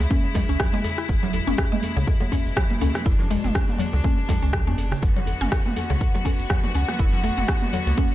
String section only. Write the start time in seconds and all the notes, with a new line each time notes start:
Already playing: C#3 G#3 E4
1.09 B2
3.06 D4
5.03 D3 B3 F#4